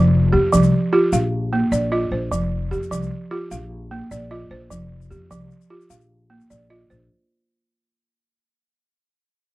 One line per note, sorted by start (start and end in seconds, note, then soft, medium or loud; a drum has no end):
0.00 0.35 F1 loud
0.00 0.33 F3 medium
0.00 0.14 C5 medium
0.00 0.14 D#5 medium
0.33 0.49 F2 medium
0.33 0.91 G4 medium
0.53 0.70 C2 medium
0.53 0.93 F3 medium
0.53 shaker medium
0.63 shaker soft
0.93 1.13 F4 medium
0.93 1.33 G4 medium
1.13 1.61 A#1 medium
1.13 1.73 F5 medium
1.13 shaker medium
1.53 1.93 A#3 medium
1.72 2.04 A#1 medium
1.72 2.32 D5 medium
1.72 shaker medium
1.92 2.32 F4 medium
1.92 2.52 D#5 medium
2.11 2.28 A#1 medium
2.11 2.52 C5 medium
2.31 2.73 F1 medium
2.31 2.72 F3 medium
2.31 shaker medium
2.71 2.88 F2 medium
2.71 3.30 G4 medium
2.71 shaker soft
2.83 shaker soft
2.91 3.07 C2 medium
2.91 3.32 F3 medium
2.91 shaker medium
3.03 shaker soft
3.31 3.51 F4 medium
3.31 3.71 G4 medium
3.51 4.00 A#1 medium
3.51 4.11 F5 medium
3.51 shaker medium
3.91 4.31 A#3 medium
4.11 4.44 A#1 medium
4.11 4.71 D5 medium
4.11 shaker medium
4.31 4.71 F4 medium
4.31 4.91 D#5 medium
4.51 4.67 A#1 medium
4.51 4.91 C5 medium
4.70 5.13 F1 medium
4.70 5.11 F3 medium
4.70 shaker medium
5.02 shaker soft
5.11 5.27 F2 medium
5.11 5.69 G4 medium
5.11 shaker soft
5.31 5.47 C2 loud
5.31 5.71 F3 medium
5.31 shaker medium
5.51 shaker soft
5.61 shaker soft
5.70 5.91 F4 medium
5.70 6.11 G4 medium
5.81 shaker soft
5.90 6.39 A#1 medium
5.90 6.51 F5 medium
5.90 shaker medium
6.01 shaker soft
6.30 6.70 A#3 medium
6.41 shaker soft
6.50 6.83 A#1 medium
6.50 7.10 D5 medium
6.50 shaker medium
6.70 7.10 F4 medium
6.70 7.31 D#5 medium
6.90 7.07 A#1 medium
6.90 7.30 C5 medium
6.90 shaker soft